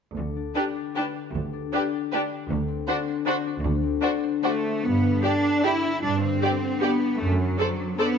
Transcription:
0.16 D2 D3
0.36 D4
0.55 D4 G4 B4
0.76 D5
0.96 D4 G4 B4
1.16 G4
1.34 D2 D3
1.53 D4
1.73 D4 G4 B4
1.93 D5
2.12 D4 G4 B4
2.32 G4
2.50 D2 D3
2.68 C4
2.87 D4 F#4 C5
3.08 C5
3.26 D4 F#4 C5
3.46 D4
3.64 D2 D3
3.83 C4
4.02 D4 F#4 C5
4.23 C5
4.43 A3 D4 F#4 C5
4.65 D4
4.84 G2 B3
5.04 D3
5.23 B3 D4 G4 D5
5.44 D4
5.64 E4 G4 D5
5.84 D4
6.02 G2 D4
6.21 D3 C4
6.43 B3 G4 D5
6.63 D4
6.81 B3 G4 D5
7.02 D4
7.20 F#2 A3
7.39 F#3
7.59 C4 A4 C5 D5
7.80 D4
7.99 B3 A4 C5 D5

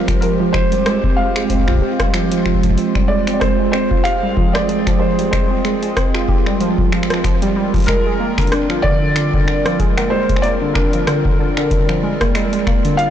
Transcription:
Already playing: G#3 C4 F4 G4 A#4 C5
0.08 F3, finger snap, kick, closed hi-hat
0.21 F3 A#4, closed hi-hat
0.40 F3
0.53 F3 C5, finger snap, kick
0.72 G3, closed hi-hat
0.86 G#3, finger snap, cross-stick, closed hi-hat
1.04 C4, kick
1.17 G#3 F5
1.36 G#3, finger snap
1.50 C4, kick, closed hi-hat
1.54 kick
1.59 kick
1.63 kick
1.68 F4, finger snap, kick
1.71 kick
1.75 kick
1.78 G4, kick
2.00 G3, kick, cross-stick, closed hi-hat
2.14 F3, finger snap, closed hi-hat
2.32 F3, closed hi-hat
2.46 F3, finger snap, kick
2.54 kick
2.63 F3, kick, closed hi-hat
2.70 kick
2.77 F3, closed hi-hat
2.95 G3, finger snap, kick
3.08 G#3 D5
3.27 C4, finger snap, closed hi-hat
3.34 D5
3.40 G#3 C5, kick, cross-stick, closed hi-hat
3.59 G#3
3.72 C4 A#4 C5, finger snap
3.88 F4 G#4, kick
4.04 G4 F5, finger snap, closed hi-hat
4.23 G3
4.37 F3, kick
4.53 F3 D5, finger snap, cross-stick, closed hi-hat
4.69 F3, closed hi-hat
4.87 F3, finger snap, kick, closed hi-hat
4.99 F3 C5
5.19 G3, closed hi-hat
5.31 G#3 C5, finger snap, kick, closed hi-hat
5.51 C4
5.65 G#3, finger snap, closed hi-hat
5.83 G#3, closed hi-hat
5.97 C4, kick, cross-stick, closed hi-hat
6.15 F4, finger snap
6.29 G4, kick
6.46 G3, finger snap
6.61 F3, closed hi-hat
6.78 F3, kick
6.92 F3, finger snap
7.03 finger snap
7.10 F3, finger snap, cross-stick, closed hi-hat
7.24 F3, finger snap, kick, closed hi-hat
7.42 G3, closed hi-hat
7.56 G3
7.74 F3, kick, closed hi-hat
7.76 closed hi-hat
7.78 closed hi-hat
7.80 closed hi-hat
7.82 closed hi-hat
7.84 closed hi-hat
7.86 G#3 A#4, finger snap, kick, closed hi-hat
7.88 G3, closed hi-hat
8.06 G#3
8.20 A#3
8.38 D3, finger snap, kick, closed hi-hat
8.41 closed hi-hat
8.47 closed hi-hat
8.52 D4, cross-stick, closed hi-hat
8.70 F3, finger snap
8.82 D3 D5, kick
9.02 D3
9.16 D3, finger snap, closed hi-hat
9.34 D3, kick
9.48 D3, finger snap
9.66 F3, cross-stick, closed hi-hat
9.80 G#3, kick, closed hi-hat
9.98 A#3, finger snap, closed hi-hat, cowbell
10.09 G#3 C5 D5
10.29 G#3, kick, closed hi-hat
10.36 finger snap
10.42 A#3 D5, closed hi-hat
10.61 D3
10.74 D4 A#4, finger snap, kick
10.93 F3, closed hi-hat
11.07 D3, finger snap, cross-stick, closed hi-hat
11.25 D3, kick
11.39 D3
11.57 D3, finger snap
11.71 D3, kick, closed hi-hat
11.89 F3, finger snap
12.03 G#3
12.21 A#3, kick, cross-stick, closed hi-hat
12.35 G#3, finger snap, closed hi-hat
12.53 G#3, closed hi-hat
12.67 A#3, finger snap, kick
12.85 D3, closed hi-hat
12.97 F4 F5, closed hi-hat

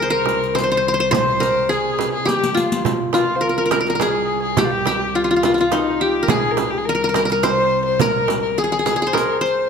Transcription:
Already playing: C2 D#4 G#4
0.00 A#4 C5
0.10 A#4
0.26 riq, frame drum
0.44 riq
0.55 C5, riq, frame drum
0.63 C5
0.72 C5
0.77 C5
0.88 C5
0.94 C5
1.00 C5
1.11 C5, riq, frame drum
1.40 A#4, riq, frame drum
1.69 G#4, riq
1.99 riq, frame drum
2.13 G#4
2.25 G4, riq, frame drum
2.44 riq
2.55 F4, riq
2.72 riq
2.85 C2, riq, frame drum
3.13 F4, riq, frame drum
3.36 C5
3.41 A#4
3.49 A#4
3.58 A#4
3.66 A#4
3.71 A#4, riq, frame drum
3.81 A#4
3.86 A#4, riq
3.90 A#4
3.95 A#4
4.00 G#4, riq, frame drum
4.42 G#4
4.57 G4, riq, frame drum
4.64 F4
4.71 G4
4.86 G4, riq, frame drum
5.15 F4
5.24 F4
5.31 F4
5.36 F4
5.43 F4, riq, frame drum
5.54 F4, riq
5.61 F4
5.72 D#4, riq, frame drum
6.00 G4
6.23 A#4
6.28 C2 G#4, riq, frame drum
6.51 A#4
6.57 G#4, riq, frame drum
6.70 G4
6.78 G#4
6.85 A#4
6.95 A#4
7.04 A#4
7.09 A#4
7.14 A#4, riq, frame drum
7.25 A#4
7.29 A#4, riq
7.43 C5, riq, frame drum
7.85 C5
7.99 A#4, riq, frame drum
8.28 riq, frame drum
8.42 A#4
8.58 G#4, riq
8.64 G#4
8.72 G#4
8.79 G#4
8.86 G#4, riq, frame drum
8.96 G#4
9.02 G#4
9.07 C5
9.13 A#4, frame drum
9.17 riq
9.41 C5
9.46 riq

